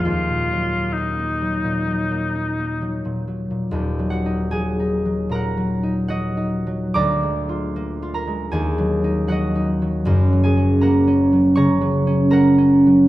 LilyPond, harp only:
<<
  \new Staff \with { instrumentName = "Harp" } { \time 4/4 \key ees \minor \tempo 4 = 75 r1 | r8 <ges' ges''>8 <aes' aes''>4 <bes' ges'' bes''>4 <ges' ees'' ges''>4 | <d'' bes'' d'''>4. <bes' bes''>8 <aes' aes''>4 <ges' ees'' ges''>4~ | <ges' ees'' ges''>8 <aes' aes''>8 <bes' ges'' bes''>4 <des'' bes'' des'''>4 <bes' ges'' bes''>4 | }
  \new Staff \with { instrumentName = "Harp" } { \clef bass \time 4/4 \key ees \minor <ees, bes>16 bes,16 ges16 bes16 ees'16 bes16 ges16 bes,16 ges16 bes16 ees'16 bes16 ges16 bes,16 ges16 bes,16 | \tuplet 3/2 { <ees,, ees,>8 ges8 ees'8 ges8 ees'8 ges8 bes,8 ges8 ees'8 ges8 ees'8 ges8 } | \tuplet 3/2 { d,8 aes8 f'8 bes8 f'8 aes8 ees,8 ges8 ees'8 ges8 ees'8 ges8 } | \tuplet 3/2 { <ges,, ges,>8 ges8 des'8 bes8 des'8 ges8 des8 ges8 des'8 bes8 des'8 ges8 } | }
>>